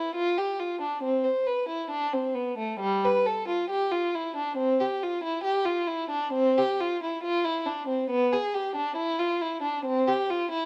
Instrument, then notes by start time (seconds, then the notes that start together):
violin
Already playing: E4
0.15 F4
0.38 G4
0.59 F4
0.81 D4
1.03 C4
1.24 C5
1.47 B4
1.69 E4
1.90 D4
2.13 C4
2.35 B3
2.58 A3
2.80 G3
3.04 B4
3.27 A4
3.48 F4
3.70 G4
3.91 F4
4.15 E4
4.36 D4
4.57 C4
4.80 G4
5.03 F4
5.24 E4
5.44 G4
5.65 F4
5.87 E4
6.10 D4
6.33 C4
6.58 G4
6.80 F4
7.03 E4
7.24 F4
7.44 E4
7.66 D4
7.88 C4
8.10 B3
8.33 G#4
8.54 G4
8.76 D4
8.96 E4
9.19 F4
9.42 E4
9.63 D4
9.85 C4
10.08 G4
10.30 F4
10.51 E4